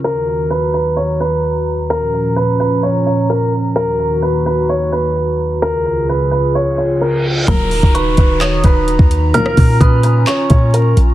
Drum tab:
HH |----------------|----------------|----------------|----------------|
CP |----------------|----------------|----------------|----------------|
SD |----------------|----------------|----------------|----------------|
BD |----------------|----------------|----------------|----------------|

HH |x-o-x-x-x-x-x-x-|x-o-x-x-x-x-x-x-|
CP |--------x-------|--------x-------|
SD |----------------|-r--------------|
BD |o--o--o---o--o--|--o-o-----o-----|